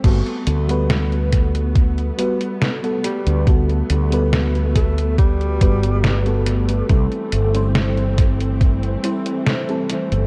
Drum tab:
CC |x---------------|----------------|----------------|
HH |xxxxxxxxxxxxxxxx|xxxxxxxxxxxxxxxx|xxxxxxxxxxxxxxxx|
SD |----o-------o---|----o-------o---|----o-------o---|
BD |o-----o-o-------|o-----o-o-o-----|o-----o-o-------|